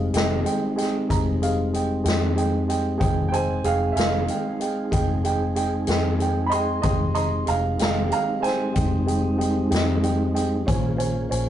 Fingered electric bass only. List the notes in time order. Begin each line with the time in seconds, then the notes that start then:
Already playing: F1
0.13 F1
1.10 F1
2.05 F2
3.01 F1
3.64 F1
3.96 F1
4.92 F1
5.88 F2
6.84 F1
7.48 F1
7.80 F1
8.76 F1
9.71 F2
10.68 A#1
11.31 A#1